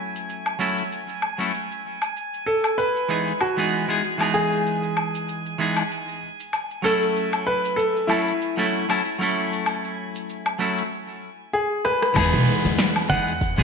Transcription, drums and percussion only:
0.16 shaker medium
0.29 shaker medium
0.46 low woodblock medium
0.46 shaker soft
0.78 shaker medium
0.92 shaker soft
1.09 shaker soft
1.22 low woodblock medium
1.40 shaker medium
1.54 shaker soft
1.72 shaker soft
2.02 low woodblock medium
2.02 shaker medium
2.17 shaker soft
2.34 shaker soft
2.64 low woodblock medium
2.64 shaker medium
2.79 shaker soft
2.97 shaker soft
3.28 shaker medium
3.41 low woodblock medium
3.41 shaker soft
3.59 shaker soft
3.90 shaker medium
4.04 shaker soft
4.21 low woodblock medium
4.21 shaker soft
4.52 shaker medium
4.66 shaker soft
4.84 shaker soft
4.97 low woodblock medium
5.15 shaker medium
5.29 shaker soft
5.46 shaker soft
5.77 low woodblock medium
5.77 shaker medium
5.91 shaker soft
6.09 shaker soft
6.40 shaker medium
6.53 low woodblock medium
6.53 shaker soft
6.71 shaker soft
7.02 shaker medium
7.16 shaker soft
7.33 low woodblock medium
7.33 shaker soft
7.65 shaker medium
7.79 shaker soft
7.96 shaker soft
8.09 low woodblock medium
8.28 shaker medium
8.42 shaker soft
8.59 shaker soft
8.90 low woodblock medium
8.90 shaker medium
9.05 shaker soft
9.22 shaker soft
9.53 shaker medium
9.66 low woodblock medium
9.66 shaker soft
9.84 shaker soft
10.15 shaker medium
10.29 shaker soft
10.46 low woodblock medium
10.46 shaker soft
10.78 shaker medium
11.85 cross-stick medium
12.02 cross-stick medium
12.16 kick loud
12.16 high conga medium
12.16 low woodblock medium
12.16 shaker medium
12.34 shaker soft
12.65 high conga medium
12.65 shaker medium
12.79 snare medium
12.79 shaker medium
12.96 low woodblock medium
12.96 shaker soft
13.10 kick medium
13.10 high conga medium
13.28 shaker medium
13.41 kick loud
13.41 shaker medium
13.58 high conga medium
13.58 low conga medium
13.58 shaker soft

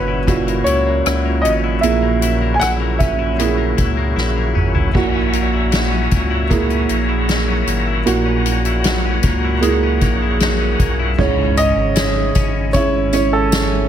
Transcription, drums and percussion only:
0.27 kick medium
0.27 closed hi-hat medium
0.48 closed hi-hat soft
0.66 closed hi-hat medium
1.06 cross-stick medium
1.06 closed hi-hat medium
1.45 closed hi-hat medium
1.83 closed hi-hat medium
2.22 closed hi-hat medium
2.61 cross-stick medium
2.61 closed hi-hat medium
3.00 kick medium
3.00 closed hi-hat medium
3.39 closed hi-hat medium
3.78 kick medium
3.78 closed hi-hat medium
4.17 snare soft
4.56 mid tom medium
4.75 floor tom medium
4.95 kick medium
4.95 crash medium
5.33 closed hi-hat medium
5.72 snare loud
5.72 closed hi-hat medium
6.11 kick medium
6.11 closed hi-hat medium
6.51 kick medium
6.51 closed hi-hat medium
6.70 closed hi-hat soft
6.89 closed hi-hat medium
7.29 snare medium
7.29 closed hi-hat medium
7.67 closed hi-hat medium
8.07 closed hi-hat medium
8.46 closed hi-hat medium
8.65 closed hi-hat soft
8.84 snare loud
8.84 closed hi-hat medium
9.23 kick medium
9.23 closed hi-hat medium
9.62 closed hi-hat medium
10.01 kick medium
10.01 closed hi-hat medium
10.40 snare medium
10.40 closed hi-hat medium
10.80 kick medium
10.80 closed hi-hat medium
11.18 kick loud
11.18 crash medium
11.57 closed hi-hat medium
11.57 tambourine medium
11.96 snare loud
11.96 closed hi-hat loud
11.96 tambourine medium
12.35 kick medium
12.35 closed hi-hat medium
12.35 tambourine soft
12.73 kick medium
12.73 closed hi-hat medium
12.73 tambourine soft
13.13 closed hi-hat medium
13.13 tambourine soft
13.52 snare loud
13.52 closed hi-hat medium
13.52 tambourine medium

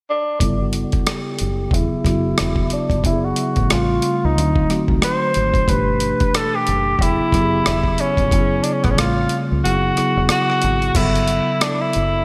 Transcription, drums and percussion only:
0.40 kick medium
0.40 closed hi-hat medium
0.73 closed hi-hat medium
0.92 kick medium
0.92 closed hi-hat soft
1.07 cross-stick loud
1.07 closed hi-hat medium
1.39 closed hi-hat medium
1.71 kick medium
1.71 closed hi-hat medium
2.05 kick medium
2.05 cross-stick soft
2.05 closed hi-hat medium
2.38 cross-stick loud
2.38 closed hi-hat medium
2.56 kick medium
2.70 closed hi-hat soft
2.90 kick medium
2.90 closed hi-hat soft
3.04 kick medium
3.04 closed hi-hat medium
3.36 closed hi-hat medium
3.56 kick medium
3.56 closed hi-hat soft
3.70 cross-stick loud
3.70 closed hi-hat medium
4.02 closed hi-hat medium
4.38 closed hi-hat medium
4.56 kick medium
4.70 cross-stick soft
4.70 closed hi-hat medium
4.88 kick medium
5.02 cross-stick loud
5.02 closed hi-hat medium
5.34 closed hi-hat medium
5.54 kick medium
5.54 closed hi-hat soft
5.68 kick medium
5.68 closed hi-hat medium
6.00 closed hi-hat medium
6.20 kick medium
6.20 closed hi-hat soft
6.34 cross-stick loud
6.34 closed hi-hat medium
6.67 closed hi-hat medium
6.99 kick medium
6.99 closed hi-hat medium
7.32 kick medium
7.32 cross-stick soft
7.32 closed hi-hat medium
7.66 cross-stick loud
7.66 closed hi-hat medium
7.84 kick medium
7.98 closed hi-hat medium
8.17 kick medium
8.17 closed hi-hat soft
8.31 kick medium
8.31 closed hi-hat medium
8.64 closed hi-hat medium
8.84 kick medium
8.84 cross-stick soft
8.84 closed hi-hat soft
8.98 cross-stick loud
8.98 closed hi-hat medium
9.29 closed hi-hat medium
9.65 closed hi-hat medium
9.97 cross-stick soft
9.97 closed hi-hat medium
10.29 cross-stick loud
10.29 closed hi-hat medium
10.50 cross-stick soft
10.62 closed hi-hat medium
10.82 closed hi-hat soft
10.95 kick medium
10.95 closed hi-hat medium
10.95 crash medium
11.15 closed hi-hat soft
11.28 closed hi-hat medium
11.61 cross-stick loud
11.61 closed hi-hat medium
11.93 closed hi-hat medium

